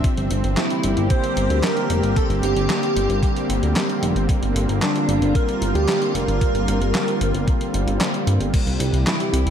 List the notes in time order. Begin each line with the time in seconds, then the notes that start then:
Already playing: C4
0.04 D3 G3 A#3 G4, kick, closed hi-hat
0.17 G1, closed hi-hat
0.31 G1, closed hi-hat
0.44 G1, closed hi-hat
0.57 E4, snare, clap, closed hi-hat
0.70 closed hi-hat
0.83 G1, closed hi-hat
0.97 G1, closed hi-hat
1.10 C5, kick, closed hi-hat
1.24 closed hi-hat
1.37 G1, closed hi-hat
1.50 D2, closed hi-hat
1.64 A#4, snare, clap, closed hi-hat
1.77 closed hi-hat
1.90 F1, closed hi-hat
2.03 G1, closed hi-hat
2.16 A4, kick, closed hi-hat
2.30 G1, closed hi-hat
2.43 G1 G4, closed hi-hat
2.56 G1, closed hi-hat
2.70 snare, clap, closed hi-hat
2.83 closed hi-hat
2.96 G1, closed hi-hat
3.09 G1, closed hi-hat
3.23 kick, closed hi-hat
3.37 closed hi-hat
3.49 G1, closed hi-hat
3.63 D2, closed hi-hat
3.76 snare, clap, closed hi-hat
3.90 closed hi-hat
4.02 F1, closed hi-hat
4.16 G1, closed hi-hat
4.29 F4, kick, closed hi-hat
4.42 G1, closed hi-hat
4.56 G1, closed hi-hat
4.69 G1, closed hi-hat
4.82 D4, snare, clap, closed hi-hat
4.96 closed hi-hat
5.08 G1, closed hi-hat
5.22 G1, closed hi-hat
5.35 A#4, kick, closed hi-hat
5.49 closed hi-hat
5.62 G1, closed hi-hat
5.75 D2 G4, closed hi-hat
5.89 snare, clap, closed hi-hat
6.02 closed hi-hat
6.15 F1 A#4, closed hi-hat
6.28 G1, closed hi-hat
6.41 kick, closed hi-hat
6.55 G1, closed hi-hat
6.68 G1, closed hi-hat
6.81 G1, closed hi-hat
6.95 snare, clap, closed hi-hat
7.08 closed hi-hat
7.21 G1, closed hi-hat
7.34 G1, closed hi-hat
7.48 kick, closed hi-hat
7.61 closed hi-hat
7.74 G1, closed hi-hat
7.87 G1, closed hi-hat
8.01 snare, clap, closed hi-hat
8.14 closed hi-hat
8.27 G2, closed hi-hat
8.40 G1, closed hi-hat
8.54 C3 E3 E4 G4, kick, closed hi-hat, crash
8.67 C2, closed hi-hat
8.80 C2, closed hi-hat
8.93 C2, closed hi-hat
9.07 E4, snare, clap, closed hi-hat
9.20 closed hi-hat
9.33 C2, closed hi-hat
9.46 C2, closed hi-hat